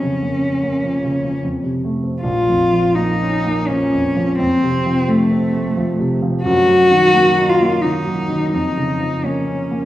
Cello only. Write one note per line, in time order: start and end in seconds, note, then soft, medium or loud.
0.00 1.39 C#4 medium
2.22 2.96 F4 medium
2.95 3.69 D#4 medium
3.67 4.38 C#4 medium
4.39 5.10 C4 medium
5.08 6.11 A3 medium
6.43 7.50 F#4 medium
7.49 7.83 F4 medium
7.82 8.52 D#4 medium
8.53 9.27 D#4 medium
9.25 9.85 C#4 soft